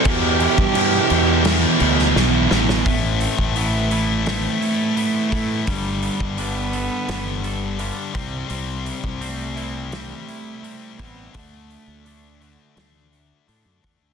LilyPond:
<<
  \new Staff \with { instrumentName = "Clean electric guitar" } { \time 4/4 \key a \minor \tempo 4 = 85 r1 | a,8 c'8 b8 e'8 c'8 e'8 b8 e'8 | g8 b8 d'8 a'8 b8 a'8 d'8 c8 | c8 g8 c'8 e'8 g8 e'4 e'8 |
d8 a8 d'8 fis'8 a8 fis'8 d'8 fis'8 | }
  \new Staff \with { instrumentName = "Cello" } { \time 4/4 \key a \minor g'2. r4 | r4 a4 a2 | g4 b2 r4 | r4 a4 a4. b8 |
a2. r4 | }
  \new Staff \with { instrumentName = "Distorted electric guitar" } { \clef bass \time 4/4 \key a \minor <e, b, e>8 <e, b, e>8 <e, b, e>8 <e, b, e>8 <e, b, e>8 <e, b, e>8 <e, b, e>8 <e, b, e>8 | <a, e a>4 <a, e a>8 <a, e a>8 <a, e a>4 <a, e a>8 <a, e a>8 | <g, d g>4 <g, d g>8 <g, d g>8 <g, d g>4 <g, d g>8 <c g c'>8 | <c g c'>4 <c g c'>8 <c g c'>8 <c g c'>4 <c g c'>8 <c g c'>8 |
<d a d'>4 <d a d'>8 <d a d'>8 <d a d'>4 <d a d'>8 <d a d'>8 | }
  \new Staff \with { instrumentName = "Distorted electric guitar" } { \clef bass \time 4/4 \key a \minor <e, b, e>8 <e, b, e>8 <e, b, e>8 <e, b, e>8 <e, b, e>8 <e, b, e>8 <e, b, e>8 <e, b, e>8 | r1 | r1 | r1 |
r1 | }
  \new Staff \with { instrumentName = "Fingered electric bass" } { \clef bass \time 4/4 \key a \minor e,8. g,8. e,4 d,8 b,,8 a,,8 | a,,8. a,,2 r8. a,8 | g,,8. g,,4~ g,,16 g,,4. c,8 | c,8. c,2 r8. a,,8 |
d,8. d,4~ d,16 d,4 a,16 fis,16 e,16 d,16 | }
  \new DrumStaff \with { instrumentName = "Drums" } \drummode { \time 4/4 <cymc bd>8 cymc16 bd16 cymc8 cymc8 <cymc sn>8 cymc16 sn16 sn8 sn16 sn16 | <hho bd>8 hho16 bd16 hho8 hho8 <hho sn>8 hho8 hho8 <hho bd>8 | <hho bd>8 hho16 bd16 hho8 hho8 <hho sn>8 hho8 hho8 <hho bd>8 | hho8 hho16 bd16 hho8 hho8 <hho sn>8 hho8 hho8 <hho bd>8 |
<hho bd>8 hho8 hho8 hho8 <hho sn>8 hho8 hho8 <hho bd>8 | }
>>